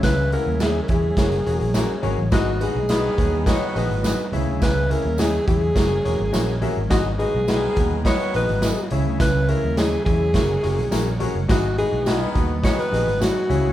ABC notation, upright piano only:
X:1
M:4/4
L:1/16
Q:1/4=105
K:G#m
V:1 name="Upright piano"
[CEGce]2 [CEGcf] z [CEGce] z [CEGce] z [CFGAc] z [CFGAc] z [CFGAc] z [CFGAc] z | [DFGBd] z [DFGBf] z [DFGBd] z [DFGBc] z [DFGBd] z [DFGBd] z [DFGBd] z [CEGce]2- | [CEGce]2 [CEGce] z [CEGcd] z [CEGce] z [CFGAc] z [CFGAc] z [CFGAc] z [CFGAe] z | [DFGBd] z [DFGBd] z [DFGBd] z [DFGBf] z [DFGBd] z [DFGBd] z [DFGBd] z [CEGce]2- |
[CEGce]2 [CEGce] z [CEGcd] z [CEGce] z [CFGAc] z [CFGAc] z [CFGAc] z [CFGAc] z | [DFGBd] z [DFGBd] z [DFGBd] z [DFGBf] z [DFGBd] z [DFGBd] z [DFGBc] z [CEGce]2 |]
V:2 name="Upright piano" clef=bass
C,4 z12 | G,,6 z8 C,2- | C,4 z12 | G,,6 z8 C,2- |
C,4 z12 | G,,6 z8 C,2 |]